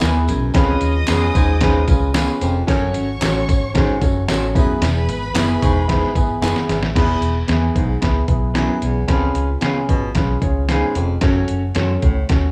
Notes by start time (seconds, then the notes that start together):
Already playing: E5 E6
0.00 D#2 B3 E4 G#4 A#4, snare, clap, closed hi-hat, tambourine
0.08 B4
0.28 B1 F#2, closed hi-hat, tambourine
0.54 C#2 F2 C#4 F4 G#4 B4 D#5 D#6, kick, snare, closed hi-hat, tambourine
0.81 D#2, closed hi-hat, tambourine
1.07 F2 B3 C#4 F4 G#4 B4, snare, clap, closed hi-hat, tambourine
1.35 D#2 G#2, kick, closed hi-hat, tambourine
1.61 G#2 C#4 F4 G#4 B4, kick, snare, closed hi-hat, tambourine
1.87 C#2 C#4 F4 G#4 B4, kick, closed hi-hat, tambourine
2.14 B3 C#4 F4 G#4 B4, snare, clap, closed hi-hat, tambourine
2.41 F1 F2, closed hi-hat, tambourine
2.67 F#1 F#2 C#4 F#4 A4 C#5 C#6, kick, snare, closed hi-hat, tambourine
2.94 G#1, closed hi-hat, tambourine
3.21 A1 C#4 F#4 A4 C#5, snare, clap, closed hi-hat, tambourine
3.49 G#1, kick, closed hi-hat, tambourine
3.74 G#2 C#4 F#4 A4 C#5, kick, snare, closed hi-hat, tambourine
4.01 F#1 C#4 F#4 A4 C#5, kick, closed hi-hat, tambourine
4.28 A1 C#4 F#4 A4 C#5, snare, clap, closed hi-hat, tambourine
4.55 E1 F#2 B3 E4 G#4 B4 B5, kick, closed hi-hat, tambourine
4.81 E1 E2, snare, closed hi-hat, tambourine
5.09 G#1, closed hi-hat, tambourine
5.34 F#1 B3 E4 G#4 B4, snare, clap, closed hi-hat, tambourine
5.62 E1 G#2 C#6, kick, closed hi-hat, tambourine
5.88 G#2 B3 E4 G#4 B4 B5, kick, snare, closed hi-hat, tambourine
6.03 snare
6.15 G#1 B3 E4 G#4 B4 G#5, kick, closed hi-hat, tambourine
6.41 F#1 B3 E4 G#4 B4 F#5, snare, clap, closed hi-hat, tambourine
6.56 snare
6.69 G#1 E2 E5, snare, closed hi-hat, tambourine
6.82 A1, snare
6.95 E1 E2 B3 E4 G#4 B4, kick, snare, closed hi-hat, crash
7.21 E1, closed hi-hat
7.47 E2 B3 E4 G#4 B4, snare, closed hi-hat
7.76 B1 G#2, kick, closed hi-hat
8.01 C#2 B3 E4 G#4 B4, kick, snare, closed hi-hat
8.28 B1 B3 E4 G#4 B4, kick, closed hi-hat
8.54 F#2 B3 E4 G#4 B4, snare, closed hi-hat
8.82 B1 E2, closed hi-hat
9.08 C#2 F2 C#4 F4 G#4 B4, kick, snare, closed hi-hat
9.34 C#2, closed hi-hat
9.61 C#3 B3 C#4 F4 G#4 B4, snare, closed hi-hat
9.89 G#1 B2, kick, closed hi-hat
10.15 B1 C#4 F4 G#4 B4, kick, snare, closed hi-hat
10.41 C#2 C#4 F4 G#4 C#5, kick, closed hi-hat
10.69 G#2 B3 C#4 F4 G#4 B4, snare, closed hi-hat
10.95 F1 F2, closed hi-hat
11.21 F#1 F#2 C#4 F#4 A4 C#5, kick, snare, closed hi-hat
11.48 F#1, closed hi-hat
11.75 F#2 C#4 F#4 A4 C#5, snare, closed hi-hat
12.02 C#2 A2, kick, closed hi-hat
12.29 D#2 C#4 F#4 A4 C#5, kick, snare, closed hi-hat